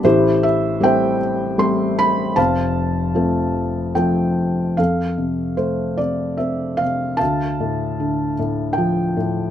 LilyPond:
<<
  \new Staff \with { instrumentName = "Felt piano" } { \time 3/4 \key f \major \tempo 4 = 76 << { c''8 e''8 g''4 c'''8 b''8 | a''2 g''4 | f''4 c''8 d''8 e''8 f''8 | a''4. r8 g''4 | } \\ { <e' g'>4 <c'' e''>4. r8 | <c'' f''>2 r4 | a'4. r4. | f''4. r4. | } >> }
  \new Staff \with { instrumentName = "Felt piano" } { \clef bass \time 3/4 \key f \major <a,, a,>4 <g a c'>4 <g a c'>4 | <f,, f,>4 <f a c'>4 <f a c'>4 | f,8 c8 a8 c8 c'8 c8 | d,8 a,8 d8 a,8 f8 a,8 | }
>>